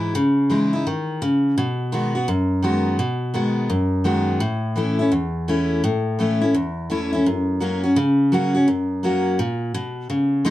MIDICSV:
0, 0, Header, 1, 2, 480
1, 0, Start_track
1, 0, Tempo, 355661
1, 194, Time_signature, 4, 2, 24, 8
1, 14175, End_track
2, 0, Start_track
2, 0, Title_t, "Steel-string acoustic guitar"
2, 0, Program_c, 0, 25
2, 0, Note_on_c, 0, 44, 81
2, 0, Note_on_c, 0, 52, 60
2, 0, Note_on_c, 0, 56, 53
2, 0, Note_on_c, 0, 63, 58
2, 0, Note_on_c, 0, 64, 61
2, 155, Note_off_c, 0, 44, 0
2, 168, Note_off_c, 0, 52, 0
2, 176, Note_off_c, 0, 56, 0
2, 178, Note_off_c, 0, 63, 0
2, 183, Note_off_c, 0, 64, 0
2, 201, Note_on_c, 0, 49, 84
2, 669, Note_on_c, 0, 52, 55
2, 681, Note_on_c, 0, 56, 54
2, 687, Note_on_c, 0, 63, 51
2, 697, Note_on_c, 0, 64, 51
2, 968, Note_off_c, 0, 52, 0
2, 969, Note_off_c, 0, 64, 0
2, 974, Note_off_c, 0, 56, 0
2, 977, Note_off_c, 0, 63, 0
2, 985, Note_on_c, 0, 64, 58
2, 1014, Note_on_c, 0, 63, 46
2, 1123, Note_off_c, 0, 49, 0
2, 1149, Note_off_c, 0, 64, 0
2, 1163, Note_off_c, 0, 63, 0
2, 1170, Note_on_c, 0, 51, 72
2, 1625, Note_off_c, 0, 51, 0
2, 1644, Note_on_c, 0, 49, 81
2, 2102, Note_off_c, 0, 49, 0
2, 2127, Note_on_c, 0, 47, 85
2, 2594, Note_on_c, 0, 51, 59
2, 2600, Note_on_c, 0, 56, 54
2, 2608, Note_on_c, 0, 59, 50
2, 2617, Note_on_c, 0, 66, 58
2, 2884, Note_off_c, 0, 66, 0
2, 2890, Note_off_c, 0, 51, 0
2, 2893, Note_off_c, 0, 56, 0
2, 2897, Note_off_c, 0, 59, 0
2, 2901, Note_on_c, 0, 66, 54
2, 2926, Note_on_c, 0, 59, 50
2, 3046, Note_off_c, 0, 47, 0
2, 3066, Note_off_c, 0, 66, 0
2, 3076, Note_on_c, 0, 42, 79
2, 3079, Note_off_c, 0, 59, 0
2, 3543, Note_on_c, 0, 51, 52
2, 3557, Note_on_c, 0, 56, 55
2, 3562, Note_on_c, 0, 59, 60
2, 3569, Note_on_c, 0, 66, 64
2, 4000, Note_off_c, 0, 42, 0
2, 4011, Note_off_c, 0, 51, 0
2, 4018, Note_off_c, 0, 56, 0
2, 4021, Note_off_c, 0, 59, 0
2, 4024, Note_off_c, 0, 66, 0
2, 4034, Note_on_c, 0, 47, 80
2, 4504, Note_on_c, 0, 51, 55
2, 4512, Note_on_c, 0, 56, 56
2, 4523, Note_on_c, 0, 59, 55
2, 4524, Note_on_c, 0, 66, 59
2, 4960, Note_off_c, 0, 47, 0
2, 4971, Note_off_c, 0, 51, 0
2, 4975, Note_off_c, 0, 56, 0
2, 4981, Note_off_c, 0, 59, 0
2, 4982, Note_off_c, 0, 66, 0
2, 4988, Note_on_c, 0, 42, 82
2, 5455, Note_on_c, 0, 51, 52
2, 5466, Note_on_c, 0, 56, 58
2, 5474, Note_on_c, 0, 59, 60
2, 5486, Note_on_c, 0, 66, 61
2, 5916, Note_off_c, 0, 42, 0
2, 5927, Note_off_c, 0, 51, 0
2, 5932, Note_off_c, 0, 56, 0
2, 5936, Note_off_c, 0, 59, 0
2, 5942, Note_off_c, 0, 66, 0
2, 5942, Note_on_c, 0, 45, 88
2, 6419, Note_on_c, 0, 52, 61
2, 6429, Note_on_c, 0, 57, 53
2, 6439, Note_on_c, 0, 61, 52
2, 6446, Note_on_c, 0, 64, 60
2, 6720, Note_off_c, 0, 64, 0
2, 6722, Note_off_c, 0, 52, 0
2, 6727, Note_off_c, 0, 57, 0
2, 6732, Note_off_c, 0, 61, 0
2, 6736, Note_on_c, 0, 64, 54
2, 6764, Note_on_c, 0, 61, 48
2, 6873, Note_off_c, 0, 45, 0
2, 6903, Note_off_c, 0, 64, 0
2, 6904, Note_on_c, 0, 40, 80
2, 6918, Note_off_c, 0, 61, 0
2, 7394, Note_on_c, 0, 52, 50
2, 7399, Note_on_c, 0, 57, 67
2, 7411, Note_on_c, 0, 61, 67
2, 7418, Note_on_c, 0, 64, 58
2, 7834, Note_off_c, 0, 40, 0
2, 7856, Note_off_c, 0, 52, 0
2, 7859, Note_off_c, 0, 57, 0
2, 7864, Note_off_c, 0, 61, 0
2, 7868, Note_off_c, 0, 64, 0
2, 7877, Note_on_c, 0, 45, 83
2, 8350, Note_on_c, 0, 52, 54
2, 8363, Note_on_c, 0, 57, 57
2, 8371, Note_on_c, 0, 61, 56
2, 8379, Note_on_c, 0, 64, 62
2, 8641, Note_off_c, 0, 64, 0
2, 8647, Note_off_c, 0, 52, 0
2, 8654, Note_off_c, 0, 57, 0
2, 8657, Note_on_c, 0, 64, 57
2, 8658, Note_off_c, 0, 61, 0
2, 8683, Note_on_c, 0, 61, 43
2, 8800, Note_off_c, 0, 45, 0
2, 8824, Note_off_c, 0, 64, 0
2, 8833, Note_on_c, 0, 40, 83
2, 8837, Note_off_c, 0, 61, 0
2, 9308, Note_on_c, 0, 52, 55
2, 9317, Note_on_c, 0, 57, 57
2, 9326, Note_on_c, 0, 61, 68
2, 9332, Note_on_c, 0, 64, 63
2, 9601, Note_off_c, 0, 64, 0
2, 9606, Note_off_c, 0, 52, 0
2, 9611, Note_off_c, 0, 57, 0
2, 9615, Note_off_c, 0, 61, 0
2, 9617, Note_on_c, 0, 64, 57
2, 9642, Note_on_c, 0, 61, 54
2, 9758, Note_off_c, 0, 40, 0
2, 9783, Note_off_c, 0, 64, 0
2, 9796, Note_off_c, 0, 61, 0
2, 9803, Note_on_c, 0, 42, 83
2, 10262, Note_on_c, 0, 54, 52
2, 10274, Note_on_c, 0, 58, 55
2, 10282, Note_on_c, 0, 61, 61
2, 10289, Note_on_c, 0, 66, 65
2, 10559, Note_off_c, 0, 66, 0
2, 10563, Note_off_c, 0, 54, 0
2, 10569, Note_off_c, 0, 58, 0
2, 10573, Note_off_c, 0, 61, 0
2, 10575, Note_on_c, 0, 66, 59
2, 10596, Note_on_c, 0, 61, 42
2, 10723, Note_off_c, 0, 42, 0
2, 10742, Note_off_c, 0, 66, 0
2, 10747, Note_on_c, 0, 49, 89
2, 10753, Note_off_c, 0, 61, 0
2, 11227, Note_on_c, 0, 54, 57
2, 11236, Note_on_c, 0, 58, 61
2, 11243, Note_on_c, 0, 61, 63
2, 11257, Note_on_c, 0, 66, 69
2, 11516, Note_off_c, 0, 66, 0
2, 11525, Note_off_c, 0, 54, 0
2, 11530, Note_off_c, 0, 58, 0
2, 11532, Note_on_c, 0, 66, 62
2, 11534, Note_off_c, 0, 61, 0
2, 11560, Note_on_c, 0, 61, 47
2, 11675, Note_off_c, 0, 49, 0
2, 11701, Note_off_c, 0, 66, 0
2, 11710, Note_on_c, 0, 42, 75
2, 11715, Note_off_c, 0, 61, 0
2, 12187, Note_on_c, 0, 54, 48
2, 12201, Note_on_c, 0, 58, 56
2, 12208, Note_on_c, 0, 61, 59
2, 12216, Note_on_c, 0, 66, 60
2, 12636, Note_off_c, 0, 42, 0
2, 12652, Note_off_c, 0, 54, 0
2, 12659, Note_off_c, 0, 58, 0
2, 12662, Note_off_c, 0, 61, 0
2, 12667, Note_off_c, 0, 66, 0
2, 12673, Note_on_c, 0, 46, 80
2, 13135, Note_off_c, 0, 46, 0
2, 13151, Note_on_c, 0, 47, 81
2, 13614, Note_off_c, 0, 47, 0
2, 13625, Note_on_c, 0, 49, 75
2, 14098, Note_on_c, 0, 56, 75
2, 14108, Note_on_c, 0, 61, 68
2, 14115, Note_on_c, 0, 63, 82
2, 14121, Note_on_c, 0, 68, 86
2, 14175, Note_off_c, 0, 49, 0
2, 14175, Note_off_c, 0, 56, 0
2, 14175, Note_off_c, 0, 61, 0
2, 14175, Note_off_c, 0, 63, 0
2, 14175, Note_off_c, 0, 68, 0
2, 14175, End_track
0, 0, End_of_file